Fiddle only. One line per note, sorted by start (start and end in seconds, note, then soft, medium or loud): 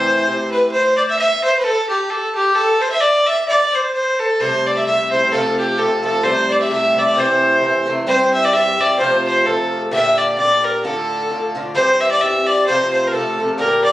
0.00 0.50 C5 medium
0.51 0.70 B4 medium
0.72 0.96 C5 loud
0.97 1.02 D5 medium
1.09 1.18 E5 loud
1.18 1.42 E5 loud
1.44 1.58 C5 medium
1.58 1.65 B4 medium
1.63 1.88 A4 loud
1.89 2.11 G4 medium
2.10 2.35 A4 medium
2.35 2.57 G4 medium
2.55 2.83 A4 loud
2.82 2.91 C5 medium
2.92 3.02 E5 medium
3.01 3.28 D5 loud
3.26 3.47 E5 loud
3.48 3.76 D5 loud
3.75 3.93 C5 medium
3.93 4.21 C5 medium
4.19 4.42 A4 medium
4.40 4.68 C5 loud
4.67 4.79 D5 medium
4.77 4.86 E5 medium
4.86 5.10 E5 medium
5.11 5.34 C5 medium
5.32 5.58 A4 medium
5.59 5.80 G4 medium
5.78 6.03 A4 medium
6.04 6.25 A4 medium
6.24 6.53 C5 loud
6.52 6.63 D5 medium
6.61 6.71 E5 medium
6.73 7.00 E5 medium
6.98 7.21 D5 medium
7.19 7.89 C5 medium
8.08 8.32 C5 loud
8.34 8.46 E5 medium
8.45 8.55 D5 medium
8.53 8.82 E5 loud
8.80 8.98 D5 medium
8.99 9.23 C5 medium
9.27 9.47 C5 medium
9.46 9.81 A4 medium
9.92 10.19 E5 loud
10.18 10.37 D5 medium
10.38 10.66 D5 loud
10.64 10.84 A#4 medium
10.84 11.52 A4 medium
11.75 12.02 C5 loud
12.00 12.10 E5 loud
12.11 12.22 D5 loud
12.21 12.48 E5 medium
12.47 12.66 D5 medium
12.66 12.91 C5 loud
12.93 13.09 C5 medium
13.07 13.14 A#4 medium
13.12 13.49 A4 medium
13.59 13.83 A#4 medium
13.84 13.92 D5 medium